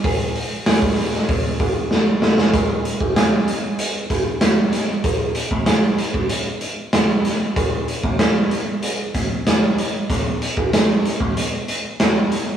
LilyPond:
\new DrumStaff \with { instrumentName = "Drums" } \drummode { \time 4/4 \tempo 4 = 95 <hho bd>8 hho8 <hho sn>16 bd16 hho16 sn16 <hho bd>8 <hho bd>8 sn8 sn16 sn16 | <hh bd>8 hh16 bd16 <hh sn>8 hh8 hh8 <hh bd>8 <hh sn>8 <hh sn>8 | <hh bd>8 hh16 bd16 <hh sn>8 hh16 bd16 hh8 hh8 <hh sn>8 <hh sn>8 | <hh bd>8 hh16 bd16 <hh sn>8 hh8 hh8 <hh bd>8 <hh sn>8 hh8 |
<hh bd>8 hh16 bd16 <hh sn>8 hh16 bd16 hh8 hh8 <hh sn>8 hh8 | }